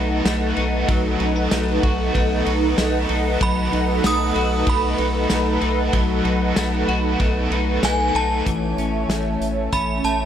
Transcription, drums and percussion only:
0.26 snare loud
0.26 ride medium
0.26 tambourine medium
0.57 ride soft
0.88 kick loud
0.88 ride medium
1.20 ride soft
1.51 snare loud
1.51 ride medium
1.51 tambourine medium
1.83 kick medium
1.83 ride soft
2.15 kick medium
2.15 ride soft
2.46 ride soft
2.78 snare loud
2.78 ride medium
2.78 tambourine medium
3.09 ride soft
3.41 kick loud
3.41 ride medium
3.73 ride soft
4.04 snare loud
4.04 ride medium
4.04 tambourine medium
4.36 ride soft
4.67 kick loud
4.67 ride medium
4.98 ride soft
5.30 snare medium
5.30 ride medium
5.30 tambourine medium
5.61 ride soft
5.93 kick loud
5.93 ride medium
6.25 ride soft
6.56 snare loud
6.56 ride medium
6.56 tambourine medium
6.89 ride soft
7.20 kick medium
7.20 ride soft
7.52 ride soft
7.83 snare medium
7.83 ride medium
7.83 tambourine medium
8.15 ride soft
8.46 kick medium
8.46 closed hi-hat medium
8.78 closed hi-hat soft
9.10 snare loud
9.10 closed hi-hat medium
9.42 closed hi-hat medium
9.72 kick medium
9.72 closed hi-hat medium
10.04 closed hi-hat soft

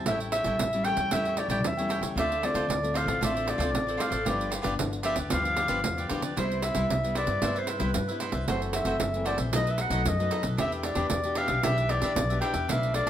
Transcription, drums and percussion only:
0.06 pandeiro medium
0.20 pandeiro soft
0.32 pandeiro medium
0.44 pandeiro medium
0.59 pandeiro medium
0.73 pandeiro soft
0.84 pandeiro medium
0.97 pandeiro medium
1.11 pandeiro medium
1.25 pandeiro soft
1.37 pandeiro medium
1.50 pandeiro medium
1.64 pandeiro medium
1.79 pandeiro soft
1.90 pandeiro medium
2.03 pandeiro medium
2.18 pandeiro medium
2.32 pandeiro soft
2.43 pandeiro medium
2.55 pandeiro medium
2.70 pandeiro medium
2.84 pandeiro soft
2.95 pandeiro medium
3.08 pandeiro medium
3.23 pandeiro medium
3.37 pandeiro soft
3.48 pandeiro medium
3.60 pandeiro medium
3.75 pandeiro medium
3.89 pandeiro soft
4.00 pandeiro medium
4.12 pandeiro medium
4.26 pandeiro medium
4.41 pandeiro soft
4.52 pandeiro medium
4.64 pandeiro medium
4.79 pandeiro medium
4.93 pandeiro soft
5.03 pandeiro medium
5.16 pandeiro medium
5.30 pandeiro medium
5.45 pandeiro soft
5.57 pandeiro medium
5.68 pandeiro medium
5.84 pandeiro medium
5.98 pandeiro soft
6.09 pandeiro medium
6.22 pandeiro medium
6.37 pandeiro medium
6.51 pandeiro soft
6.62 pandeiro medium
6.75 pandeiro medium
6.90 pandeiro medium
7.04 pandeiro soft
7.15 pandeiro medium
7.27 pandeiro medium
7.42 pandeiro medium
7.56 pandeiro soft
7.67 pandeiro medium
7.80 pandeiro medium
7.94 pandeiro medium
8.09 pandeiro soft
8.20 pandeiro medium
8.32 pandeiro medium
8.48 pandeiro medium
8.62 pandeiro soft
8.73 pandeiro medium
8.85 pandeiro medium
9.00 pandeiro medium
9.14 pandeiro soft
9.26 pandeiro medium
9.38 pandeiro medium
9.53 pandeiro medium
9.67 pandeiro soft
9.78 pandeiro medium
9.90 pandeiro medium
10.06 pandeiro medium
10.20 pandeiro soft
10.31 pandeiro medium
10.43 pandeiro medium
10.58 pandeiro medium
10.72 pandeiro soft
10.83 pandeiro medium
10.95 pandeiro medium
11.10 pandeiro medium
11.24 pandeiro soft
11.35 pandeiro medium
11.48 pandeiro medium
11.63 pandeiro medium
11.78 pandeiro soft
11.89 pandeiro medium
12.02 pandeiro medium
12.16 pandeiro medium
12.30 pandeiro soft
12.42 pandeiro medium
12.54 pandeiro medium
12.69 pandeiro medium
12.83 pandeiro soft
12.94 pandeiro medium

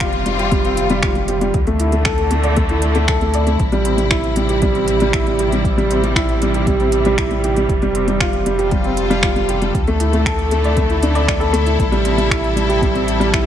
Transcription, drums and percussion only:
0.00 finger snap medium
0.00 kick loud
0.00 closed hi-hat soft
0.13 closed hi-hat soft
0.26 closed hi-hat medium
0.39 closed hi-hat soft
0.52 kick loud
0.52 closed hi-hat soft
0.65 closed hi-hat soft
0.77 closed hi-hat medium
0.90 closed hi-hat soft
1.03 finger snap loud
1.03 kick loud
1.03 closed hi-hat soft
1.15 closed hi-hat soft
1.28 closed hi-hat medium
1.41 closed hi-hat soft
1.54 kick loud
1.54 closed hi-hat soft
1.67 closed hi-hat soft
1.80 closed hi-hat medium
1.92 closed hi-hat soft
2.05 finger snap loud
2.05 kick loud
2.05 closed hi-hat soft
2.18 closed hi-hat soft
2.31 closed hi-hat medium
2.44 closed hi-hat soft
2.57 kick loud
2.57 closed hi-hat soft
2.69 closed hi-hat soft
2.82 closed hi-hat medium
2.95 closed hi-hat soft
3.08 finger snap medium
3.08 kick loud
3.08 closed hi-hat soft
3.21 closed hi-hat soft
3.34 closed hi-hat medium
3.47 closed hi-hat soft
3.60 kick loud
3.60 closed hi-hat soft
3.72 closed hi-hat soft
3.85 closed hi-hat medium
3.98 closed hi-hat soft
4.11 finger snap loud
4.11 kick loud
4.11 closed hi-hat soft
4.24 closed hi-hat soft
4.36 closed hi-hat medium
4.49 closed hi-hat soft
4.62 kick loud
4.62 closed hi-hat soft
4.75 closed hi-hat soft
4.88 closed hi-hat medium
5.00 closed hi-hat soft
5.13 finger snap medium
5.13 kick loud
5.13 closed hi-hat soft
5.27 closed hi-hat soft
5.39 closed hi-hat medium
5.52 closed hi-hat soft
5.64 kick medium
5.64 closed hi-hat soft
5.78 closed hi-hat soft
5.91 closed hi-hat medium
6.04 closed hi-hat soft
6.16 finger snap medium
6.16 kick loud
6.16 closed hi-hat soft
6.29 closed hi-hat soft
6.42 closed hi-hat medium
6.54 closed hi-hat soft
6.67 kick medium
6.67 closed hi-hat soft
6.80 closed hi-hat soft
6.92 closed hi-hat medium
7.05 closed hi-hat soft
7.18 finger snap medium
7.18 kick loud
7.18 closed hi-hat soft
7.31 closed hi-hat soft
7.44 closed hi-hat medium
7.56 closed hi-hat soft
7.69 kick loud
7.69 closed hi-hat soft
7.82 closed hi-hat soft
7.95 closed hi-hat medium
8.08 closed hi-hat soft
8.20 finger snap loud
8.20 kick loud
8.20 closed hi-hat soft
8.33 closed hi-hat soft
8.46 closed hi-hat medium
8.59 closed hi-hat soft
8.71 kick loud
8.71 closed hi-hat soft
8.84 closed hi-hat soft
8.97 closed hi-hat medium
9.11 closed hi-hat soft
9.23 finger snap medium
9.23 kick loud
9.23 closed hi-hat soft
9.36 closed hi-hat soft
9.49 closed hi-hat medium
9.62 closed hi-hat soft
9.74 kick loud
9.74 closed hi-hat soft
9.87 closed hi-hat soft
10.00 closed hi-hat medium
10.13 closed hi-hat soft
10.26 finger snap loud
10.26 kick loud
10.26 closed hi-hat soft
10.39 closed hi-hat soft
10.51 closed hi-hat medium
10.64 closed hi-hat soft
10.77 kick medium
10.77 closed hi-hat soft
10.90 closed hi-hat soft
11.03 closed hi-hat medium
11.15 closed hi-hat soft
11.28 finger snap medium
11.28 kick loud
11.28 closed hi-hat soft
11.41 closed hi-hat soft
11.54 closed hi-hat medium
11.66 closed hi-hat soft
11.79 kick loud
11.79 closed hi-hat soft
11.92 closed hi-hat soft
12.05 closed hi-hat medium
12.18 closed hi-hat soft
12.31 finger snap loud
12.31 kick loud
12.31 closed hi-hat soft
12.44 closed hi-hat soft
12.57 closed hi-hat medium
12.70 closed hi-hat soft
12.82 kick loud
12.82 closed hi-hat soft
12.95 closed hi-hat soft
13.08 closed hi-hat medium
13.21 closed hi-hat soft
13.33 finger snap medium
13.33 kick loud
13.33 closed hi-hat soft

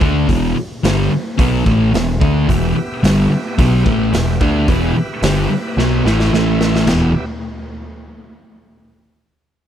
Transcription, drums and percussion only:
0.01 kick loud
0.29 kick medium
0.29 open hi-hat medium
0.84 snare loud
0.84 open hi-hat medium
1.39 kick loud
1.39 open hi-hat medium
1.66 kick loud
1.94 snare loud
1.94 open hi-hat medium
2.21 kick loud
2.49 kick medium
2.49 open hi-hat medium
3.04 snare loud
3.04 open hi-hat medium
3.59 kick loud
3.59 open hi-hat medium
3.86 kick loud
4.13 snare loud
4.13 open hi-hat medium
4.41 kick loud
4.68 kick loud
4.68 open hi-hat medium
5.22 snare loud
5.22 open hi-hat medium
5.79 snare medium
6.06 snare medium
6.20 snare medium
6.34 snare medium
6.61 snare loud
6.75 snare loud
6.87 snare loud
6.87 floor tom loud
6.87 splash medium

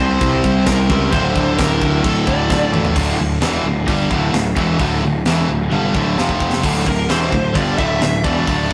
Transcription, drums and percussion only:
0.21 kick loud
0.21 china medium
0.44 kick medium
0.66 kick loud
0.66 snare loud
0.66 china medium
0.90 kick medium
1.12 kick loud
1.12 china medium
1.36 kick medium
1.59 kick loud
1.59 snare loud
1.59 china medium
1.82 kick medium
2.04 kick loud
2.04 china medium
2.27 kick medium
2.50 kick loud
2.50 snare medium
2.74 mid tom loud
2.85 floor tom medium
2.96 kick loud
2.96 crash loud
3.42 snare loud
3.42 open hi-hat medium
3.88 kick loud
3.88 open hi-hat medium
4.11 kick loud
4.34 snare loud
4.34 open hi-hat medium
4.57 kick loud
4.79 kick loud
4.79 open hi-hat medium
5.26 snare loud
5.26 open hi-hat medium
5.72 high tom medium
5.95 kick medium
6.18 snare medium
6.29 kick medium
6.40 kick medium
6.53 snare medium
6.64 kick loud
6.64 crash loud
6.87 kick medium
7.10 snare loud
7.10 open hi-hat medium
7.32 kick medium
7.55 kick loud
7.55 open hi-hat medium
7.78 kick loud
8.02 snare loud
8.02 open hi-hat medium
8.24 kick loud
8.47 kick loud
8.47 open hi-hat medium

